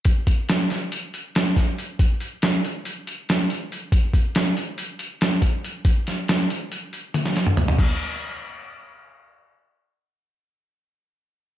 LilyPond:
\new DrumStaff \with { instrumentName = "Drums" } \drummode { \time 9/8 \tempo 4. = 93 <hh bd>8 <hh bd>8 <hh sn>8 <hh sn>8 hh8 hh8 <hh sn>8 <hh bd sn>8 hh8 | <hh bd>8 hh8 <hh sn>8 hh8 hh8 hh8 <hh sn>8 hh8 hh8 | <hh bd>8 <hh bd>8 <hh sn>8 hh8 hh8 hh8 <hh sn>8 <hh bd>8 hh8 | <hh bd>8 <hh sn>8 <hh sn>8 hh8 hh8 hh8 <hh tommh>16 sn16 <hh sn>16 toml16 <hh tomfh>16 tomfh16 |
<cymc bd>4 r4 r4 r4. | r4 r4 r4 r4. | }